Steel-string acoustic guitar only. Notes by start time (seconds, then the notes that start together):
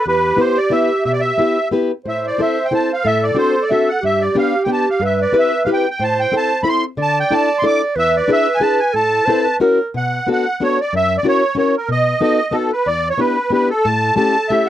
0.06 E2
0.36 B3 E4 G4 B4
0.70 B3 E4 G4 B4
1.05 B2
1.38 B3 E4 G4 B4
1.71 B3 E4 G4 B4
2.05 A2
2.38 C4 E4 A4 C5
2.71 C4 E4 A4 C5
3.05 A2
3.35 C4 D4 F#4 A4
3.71 C4 D4 F#4 A4
4.03 G2
4.35 B3 D4 G4 B4
4.66 B3 D4 G4 B4
5.00 G2
5.32 C4 E4 G4 B4
5.65 C4 E4 G4 B4
6.00 A2
6.32 C4 E4 A4 C5
6.63 C4 E4 A4 C5
6.97 D3
7.30 D4 E4 A4 D5
7.62 D4 E4 A4 D5
7.96 E2
8.28 D4 E4 G#4 B4
8.60 D4 E4 G#4 B4
8.94 A2
9.28 C4 E4 A4 B4
9.60 C#4 E4 F#4 A#4
9.94 B2
10.27 B3 D4 F#4 A4
10.60 B3 D4 F#4 A4
10.93 F#2
11.23 C#4 E4 F#4 A#4
11.55 C#4 E4 F#4 A#4
11.88 B2
12.21 B3 D#4 F#4 A4
12.51 B3 D#4 F#4 A4
12.86 E2
13.18 B3 D4 E4 G4
13.50 B3 D4 E4 G4
13.85 A2
14.16 A3 C#4 E4 G4
14.50 A3 C#4 E4 G4